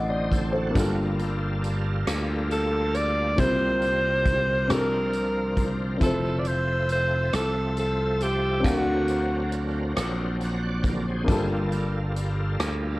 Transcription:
Already playing: A1 D3 C4 D4 D#4 F#4 A4 D#5 F#5
0.09 C5 D5 D#5
0.31 A4 C5, kick, closed hi-hat
0.53 F#4 A4 C5
0.71 A#3 D4
0.75 G1 G2 G3 A#3 F4 G4 A4, kick, closed hi-hat
0.79 A4
1.19 closed hi-hat
1.64 closed hi-hat
2.07 D2, cross-stick, closed hi-hat
2.51 A4, closed hi-hat
2.94 D5, closed hi-hat
3.36 C2 C3 G3 A#3 C4 E4 G4 A#4 C5, kick, closed hi-hat
3.44 F4
3.81 closed hi-hat
4.26 kick, closed hi-hat
4.68 C2 C3 E3 C4 D4 F4 G4 A4 A#4, cross-stick, closed hi-hat
4.77 F3 A#4
5.13 closed hi-hat
5.57 kick, closed hi-hat
5.98 F1 C4 E4, kick, closed hi-hat
6.02 F3 C4 F4 A4 C5 E5
6.39 D5
6.45 C5, closed hi-hat
6.89 C5, closed hi-hat
7.33 C2 A4, cross-stick, closed hi-hat
7.77 A4, closed hi-hat
8.21 G4, closed hi-hat
8.60 C4 D4 F5
8.64 D2 D3 F#3 C4 D4 F#4 G4 A#4, kick, closed hi-hat
8.68 A#4
8.77 F#4
9.08 closed hi-hat
9.52 closed hi-hat
9.96 A#1, cross-stick, closed hi-hat
10.40 F#5 A#5, closed hi-hat
10.63 D5 F#5
10.84 A#4 D5, kick, closed hi-hat
11.08 G#4 C5
11.24 G2 A#3 D4 F4, kick
11.28 G1 G3 A3 F4 G4 A4, closed hi-hat
11.37 A#3
11.72 closed hi-hat
12.16 closed hi-hat
12.60 D2, cross-stick, closed hi-hat

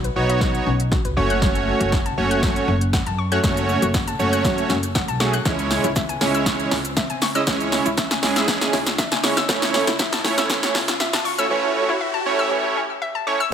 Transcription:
Already playing: riser
0.04 B4, closed hi-hat
0.16 B1 B3 D#4 F#4 C#5
0.29 D#5, closed hi-hat
0.41 F#3, kick, snare
0.55 closed hi-hat
0.66 B1 C#4
0.80 closed hi-hat
0.92 F#4, kick, snare
1.05 C#2 B4, closed hi-hat
1.16 F#1 A3 C#4 F#4 C#5 C#6
1.30 F#6, closed hi-hat
1.42 F#3, kick, snare
1.55 closed hi-hat
1.80 F#1 F#4, closed hi-hat
1.92 F#5, kick, snare
2.06 A5, closed hi-hat
2.17 F#1 A3 C#4 F#4 C#5
2.31 F#6, closed hi-hat
2.43 F#3, kick, snare
2.56 closed hi-hat
2.68 F#1 C#4
2.81 closed hi-hat
2.93 F#5, kick, snare
3.06 F#2 A5, closed hi-hat
3.18 C#6
3.32 A3 C#4 F#4 C#5 F#6, closed hi-hat
3.43 F#1 F#3 A3 C#4 F#4 C#5, kick, snare, shaker
3.57 closed hi-hat, shaker
3.69 shaker
3.82 F#1 F#4, closed hi-hat, shaker
3.94 F#5, kick, snare, shaker
4.07 A5, closed hi-hat, shaker
4.19 F#1 A3 C#4 F#4 C#5, shaker
4.33 F#6, closed hi-hat, shaker
4.44 F#3, kick, snare, shaker
4.58 closed hi-hat, shaker
4.70 F#1 C#4, snare, shaker
4.83 closed hi-hat, shaker
4.95 F#5, kick, snare, shaker
5.08 B1 A5, closed hi-hat, shaker
5.20 A3 C#4 F#4 G#4 C#6, snare, shaker
5.33 F#6, closed hi-hat, shaker
5.45 C#2 E3 G#3 C#4 E4 C#5, kick, snare, shaker
5.59 closed hi-hat, shaker
5.71 snare, open hi-hat, shaker
5.84 C#2 E4, closed hi-hat, shaker
5.96 E5, kick, snare, shaker
6.09 G#5, closed hi-hat, shaker
6.21 C#2 G#3 C#4 E4 C#5, snare, open hi-hat, shaker
6.34 E6, closed hi-hat, shaker
6.46 E3, kick, snare, shaker
6.60 closed hi-hat, shaker
6.71 C#2 C#4, snare, open hi-hat, shaker
6.85 closed hi-hat, shaker
6.97 E5, kick, snare, shaker
7.10 C#3 G#5, closed hi-hat, shaker
7.22 C#6, snare, open hi-hat, shaker
7.35 G#3 C#4 E4 D#5 E6, closed hi-hat, shaker
7.47 C#2 E3 G#3 C#4 E4 C#5, kick, snare, shaker
7.60 closed hi-hat, shaker
7.72 snare, open hi-hat, shaker
7.86 C#2 E4, closed hi-hat, shaker
7.97 E5, kick, snare, shaker
8.11 G#5, snare, closed hi-hat, shaker
8.23 C#2 G#3 C#4 E4 G#4, snare, open hi-hat, shaker
8.36 E6, snare, closed hi-hat, shaker
8.48 E3, kick, snare, shaker
8.61 snare, closed hi-hat, shaker
8.73 C#2 C#4, snare, open hi-hat, shaker
8.86 snare, closed hi-hat, shaker
8.98 E5, kick, snare, shaker
9.12 C#3 G#5, snare, closed hi-hat, shaker
9.23 G#3 C#4 E4 C#5 C#6, snare, open hi-hat, shaker
9.37 E6, snare, closed hi-hat, shaker
9.48 C#2 E3 A3 C#4 E4 C#5, kick, snare, shaker
9.62 snare, closed hi-hat, shaker
9.74 snare, open hi-hat, shaker
9.87 C#2 E4, snare, closed hi-hat, shaker
9.99 E5, kick, snare, shaker
10.12 A5, snare, closed hi-hat, shaker
10.24 C#2 A3 C#4 E4 C#5, snare, open hi-hat, shaker
10.38 E6, snare, closed hi-hat, shaker
10.49 E3, kick, snare, shaker
10.63 snare, closed hi-hat, shaker
10.75 C#2 C#4, snare, open hi-hat, shaker
10.88 snare, closed hi-hat, shaker
11.00 E5, snare, shaker
11.13 C#3 A5, snare, closed hi-hat, shaker
11.25 C#6, open hi-hat, shaker
11.38 A3 C#4 E4 C#5 E6, closed hi-hat, shaker
11.50 E3 A3 C#4 E4 C#5
11.89 E4
12.01 E5
12.14 A5
12.26 A3 C#4 E4 C#5
12.39 E6
12.51 E3
12.76 C#4
13.02 E5
13.15 A5
13.27 A3 C#4 E4 C#5 C#6
13.40 E6

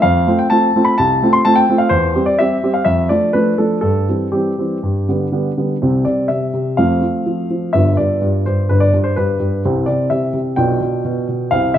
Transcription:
0.02 F2 F5
0.27 A3 C4 F4
0.39 G5
0.50 A3 C4 F4 A5
0.76 A3 C4 F4
0.85 B5
0.98 C2 A5
1.23 A3 C4 F4
1.33 C6
1.45 A3 C4 F4 A5
1.56 G5
1.70 A3 C4 F4
1.78 F5
1.89 E2 C5
2.15 G3 C4 G4
2.26 D5
2.39 G3 C4 G4 E5
2.63 G3 C4 G4
2.74 F5
2.85 F2 E5
3.09 F3 A3 D4 D5
3.33 F3 A3 D4 B4
3.58 F3 A3 D4 A4
3.81 G2 A4
4.08 E3 G3 C4
4.32 E3 G3 C4 G4
4.58 E3 G3 C4
4.83 G2
5.09 D3 G3 B3
5.32 D3 G3 B3
5.57 D3 G3 B3
5.82 C2 C3 G3 C4
6.05 C3 D5
6.28 C3 E5
6.54 C3
6.77 F2 F3 A3 C4 F5
7.01 F3
7.26 F3
7.50 F3
7.73 G1 G2 B3 F4 E5
7.97 G2 D5
8.21 G2
8.46 G2 C5
8.69 G1 G2 B4
8.80 D5
8.93 G2
9.04 C5
9.16 G2 B4
9.39 G2
9.65 C2 C3 C4 E4
9.86 C3 D5
10.10 C3 E5
10.33 C3
10.56 B1 B2 D4 F4 G5
10.81 B2
11.05 B2
11.28 B2
11.51 C2 C3 C4 E4 F5
11.74 C3 E5

